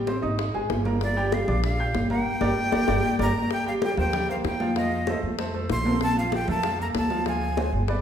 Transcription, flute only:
1.03 D5
1.34 F5
1.64 F5
2.12 G5
3.22 A#5
3.53 G5
3.68 F5
3.84 G5
4.00 G5
4.31 F5
4.46 G5
4.78 D#5
5.72 C6
6.03 A5
6.19 F5
6.35 G5
6.51 A5
6.82 A#5
6.97 A5
7.28 G#5

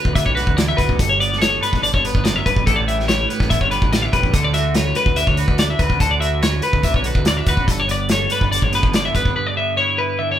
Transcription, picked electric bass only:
0.05 D2
0.15 D2
0.26 B1
0.47 D2
0.79 D2
0.89 D2
1.00 G1
1.73 G1
1.94 G1
2.15 G1
2.46 G1
2.56 G1
2.67 A1
3.40 A1
3.50 A1
3.61 G1
3.82 A1
4.14 A1
4.23 A1
4.34 D2
5.06 D2
5.27 D2
5.48 D2
5.79 D2
5.90 D2
6.01 D2
6.73 D2
6.84 D2
6.94 B1
7.15 D2
7.46 D2
7.57 A1
7.68 G1
8.41 G1
8.63 G1
8.83 G1
9.15 G1
9.25 G1

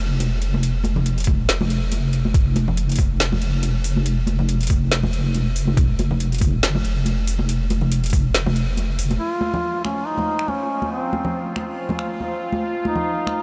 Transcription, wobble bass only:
0.00 F1
1.27 F1
1.49 F1
2.34 F1
2.99 F1
4.70 F1
6.41 F1
6.63 F#1
6.84 F1
8.13 F1
8.34 F1
8.98 F1

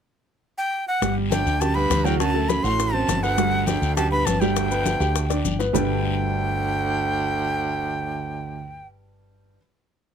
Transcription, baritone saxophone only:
1.30 D2
1.61 F#2
1.76 G2
2.06 E2
2.20 F#2
2.49 F#2
2.64 A2
2.93 F#2
3.23 D2
3.67 D2
3.96 F#2
4.11 G2
4.26 F#2
4.41 D2
5.74 D2

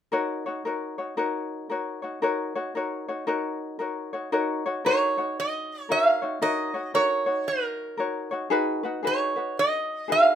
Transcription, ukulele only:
0.12 D#4 F#4 A#4 C#5
0.46 D#4 F#4 C#5
0.65 D#4 F#4 A#4 C#5
0.98 D#4 F#4 C#5
1.17 D#4 F#4 A#4 C#5
1.70 D#4 F#4 A#4 C#5
2.02 D#4 F#4 C#5
2.22 D#4 F#4 A#4 C#5
2.55 D#4 F#4 C#5
2.75 D#4 F#4 A#4 C#5
3.08 D#4 F#4 C#5
3.27 D#4 F#4 A#4 C#5
3.79 D#4 F#4 A#4 C#5
4.13 D#4 F#4 C#5
4.32 D#4 F#4 A#4 C#5
4.66 D#4 F#4 C#5
4.85 D#4 F#4 A#4 C#5
5.18 D#4 F#4 C#5
5.89 D#4 F#4 A#4 C#5
6.22 D#4 F#4 C#5
6.42 D#4 F#4 A#4 C#5
6.74 D#4 F#4 C#5
6.94 D#4 F#4 A#4 C#5
7.26 D#4 F#4 C#5
7.97 D#4 F#4 A#4 C#5
8.31 D#4 F#4 C#5
8.50 D#4 F#4 G#4 B4
8.83 D#4 F#4 B4
9.03 D#4 F#4 G#4 B4
9.36 D#4 F#4 B4
10.08 D#4 F#4 G#4 B4

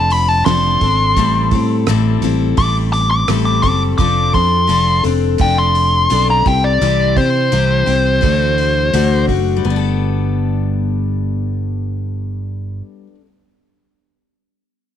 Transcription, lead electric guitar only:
Already playing: A5
0.12 B5
0.28 A5
0.45 C6
2.58 D6
2.93 D6
3.11 D6
3.45 D6
3.63 D6
3.98 D6
4.34 C6
5.41 G5
5.58 C6
6.30 A#5
6.47 G5
6.64 D5
7.17 C5

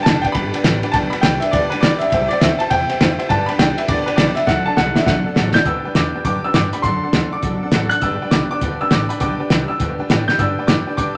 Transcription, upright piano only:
0.03 A5
0.22 G5
0.32 B5
0.92 A5
1.10 B5
1.21 G5
1.40 E5
1.51 D5
1.70 B4
1.80 D5
1.99 E5
2.10 E5
2.28 D5
2.40 E5
2.59 A5
2.70 G5
3.29 A5
3.46 B5
3.59 G5
3.77 E5
3.88 D5
4.06 B4
4.16 D5
4.35 E5
4.47 F#5
4.66 A5
4.77 F#5
4.95 E5
5.06 F#5
5.54 G6
5.66 E6
5.95 D6
6.25 D6
6.44 E6
6.54 D6
6.73 B5
6.82 C6
7.32 D6
7.89 F#6
8.02 E6
8.31 D6
8.51 D6
8.81 E6
8.93 D6
9.09 B5
9.20 D6
9.68 E6
10.28 G6
10.39 E6
10.67 D6
10.97 D6

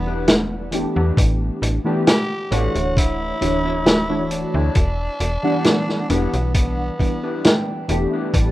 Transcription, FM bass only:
Already playing: E1
0.96 E2
1.17 A1
1.62 A1
2.52 A1
2.75 D1
3.42 D1
4.54 D2
4.76 E1
5.20 E1
6.10 E1
6.34 B1
7.89 E1
8.34 A1

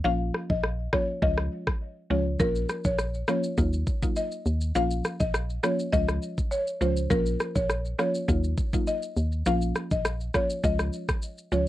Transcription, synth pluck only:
0.04 F3 A#3 C#4 F4
0.93 F3 A#3 C#4 F4
1.22 F3 G#3 C#4 F4
2.10 F3 G#3 C#4 F4
2.40 F3 A#3 C#4 F4
3.28 F3 A#3 C#4 F4
3.58 F#3 A#3 D#4 F4
4.02 F#3 A#3 D#4 F4
4.75 F3 A#3 C#4 F4
5.63 F3 A#3 C#4 F4
5.93 F3 G#3 C#4 F4
6.81 F3 G#3 C#4 F4
7.10 F3 A#3 C#4 F4
7.98 F3 A#3 C#4 F4
8.28 F#3 A#3 D#4 F4
8.73 F#3 A#3 D#4 F4
9.46 F3 A#3 C#4 F4
10.34 F3 A#3 C#4 F4
10.63 F3 G#3 C#4 F4
11.52 F3 G#3 C#4 F4

